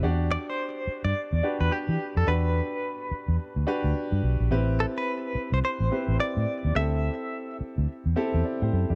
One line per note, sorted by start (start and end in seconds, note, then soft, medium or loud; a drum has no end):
0.03 0.36 E2 loud
0.03 0.78 D4 medium
0.03 0.79 F#4 medium
0.03 0.79 G4 medium
0.03 0.79 D5 loud
0.32 0.47 D5 loud
0.50 1.04 C5 loud
0.87 muted fingered electric bass stroke medium
1.05 1.12 G2 medium
1.05 1.57 D5 loud
1.33 1.40 E2 medium
1.43 1.98 D4 medium
1.43 1.98 F#4 medium
1.43 1.98 G4 medium
1.43 1.99 B4 medium
1.60 1.68 E2 medium
1.60 1.72 B4 medium
1.72 2.17 G4 medium
1.89 1.96 E3 medium
2.17 2.24 F2 loud
2.17 2.28 A4 medium
2.27 2.60 E2 loud
2.27 3.02 D4 medium
2.27 3.03 F#4 medium
2.27 3.03 G4 medium
2.27 3.36 B4 loud
2.27 3.03 B4 medium
3.11 muted fingered electric bass stroke medium
3.28 3.36 E2 medium
3.56 3.64 D2 loud
3.67 4.22 D4 medium
3.67 4.22 F#4 medium
3.67 4.22 G4 medium
3.67 4.23 B4 loud
3.84 3.92 D2 medium
4.12 4.20 G2 medium
4.23 4.36 B1 medium
4.40 4.48 A#1 medium
4.51 4.84 A1 loud
4.51 5.27 C4 medium
4.51 5.27 E4 medium
4.51 5.27 G4 medium
4.51 5.27 B4 loud
4.80 4.85 A4 medium
4.98 5.53 B4 medium
5.35 muted fingered electric bass stroke medium
5.52 5.60 C2 medium
5.52 5.58 C5 loud
5.65 6.16 C5 loud
5.80 5.88 A1 medium
5.91 6.46 C4 medium
5.91 6.47 E4 medium
5.91 6.47 G4 medium
5.91 6.47 B4 medium
6.08 6.16 A1 medium
6.20 6.76 D5 medium
6.37 6.45 A2 medium
6.65 6.73 D#2 medium
6.75 7.08 D2 loud
6.75 7.51 C4 medium
6.75 7.51 E4 medium
6.75 7.51 G4 medium
6.75 7.52 A4 medium
6.75 7.56 E5 loud
7.61 muted fingered electric bass stroke soft
7.78 7.85 D2 medium
8.06 8.13 E2 medium
8.16 8.71 C4 medium
8.16 8.44 E4 medium
8.16 8.44 G4 medium
8.16 8.44 A4 loud
8.34 8.42 E2 medium
8.45 8.61 A4 medium
8.45 8.61 D5 medium
8.62 8.70 A2 medium
8.62 8.72 G4 medium
8.62 8.72 C5 medium
8.73 8.85 F#2 medium
8.73 8.89 E4 medium
8.73 8.89 A4 medium
8.90 8.95 F2 medium
8.90 8.95 D4 medium
8.90 8.95 G4 medium